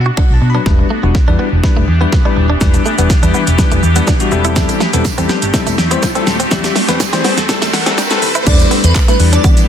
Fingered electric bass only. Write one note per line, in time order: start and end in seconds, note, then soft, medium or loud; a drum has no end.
0.17 muted fingered electric bass stroke soft
0.30 0.38 B1 medium
0.42 0.58 B2 medium
0.66 0.82 E1 loud
1.03 1.11 E1 medium
1.28 1.36 E2 medium
1.52 1.60 E1 medium
1.77 1.84 E1 loud
1.88 2.04 E2 medium
2.37 2.53 D#1 medium
2.61 2.77 E1 loud
2.98 3.06 E1 medium
3.10 muted fingered electric bass stroke soft
3.23 3.31 E2 loud
3.47 3.55 E1 medium
3.72 3.79 E1 loud
3.83 3.99 E2 loud
4.32 4.64 E1 medium
4.94 5.01 E1 medium
5.05 muted fingered electric bass stroke soft
5.18 5.26 E2 medium
5.42 5.50 G1 medium
5.67 5.74 E1 loud
5.78 5.95 E2 loud
6.27 6.43 D#1 medium
6.51 6.68 E2 loud
6.89 6.96 E2 loud
7.13 7.21 E3 loud
7.38 7.45 E2 medium
7.62 7.70 E2 loud
7.74 7.90 E3 loud
8.22 8.39 D#2 medium
8.47 8.63 E2 loud
8.84 8.92 E2 loud
9.20 9.36 E2 loud
9.44 9.60 E3 loud